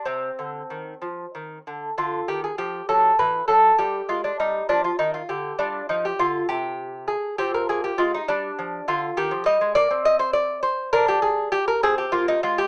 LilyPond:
<<
  \new Staff \with { instrumentName = "Lute" } { \time 6/8 \key c \minor \tempo 4. = 67 << { c'2~ c'8 r8 | f'8 g'16 aes'16 g'8 a'8 b'8 a'8 | g'8 f'16 d'16 ees'8 d'16 f'16 ees'16 f'16 g'8 | d'8 ees'16 g'16 f'8 g'4 aes'8 |
g'16 bes'16 aes'16 g'16 f'16 ees'16 d'4 f'8 | g'8 ees''8 d''8 ees''16 c''16 d''8 c''8 | bes'16 g'16 aes'8 g'16 bes'16 aes'16 g'16 f'16 ees'16 f'16 g'16 | } \\ { r2. | r2. | r2. | f'4. r4. |
f'4. r4. | r2. | r2. | } >> }
  \new Staff \with { instrumentName = "Lute" } { \clef bass \time 6/8 \key c \minor c8 d8 ees8 f8 ees8 d8 | d8 ees8 f8 fis8 e8 fis8 | g8 aes8 g8 f8 ees8 d8 | g8 f8 d8 c4. |
c'8 bes8 aes8 g8 f8 d8 | ees16 f16 g16 aes16 bes16 c'4.~ c'16 | d'4. c'8 bes8 aes8 | }
>>